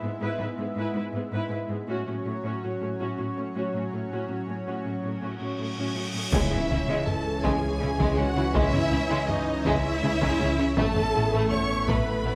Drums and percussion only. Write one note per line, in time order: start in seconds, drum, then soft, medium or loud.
6.33 taiko medium
6.51 taiko low-mid soft
7.07 taiko low-mid medium
7.44 taiko medium
8.00 taiko medium
8.55 taiko loud
8.74 taiko low-mid medium
9.29 taiko low-mid medium
9.66 taiko medium
10.22 taiko medium
10.77 taiko medium
10.96 taiko low-mid medium
11.52 taiko low-mid medium
11.88 taiko medium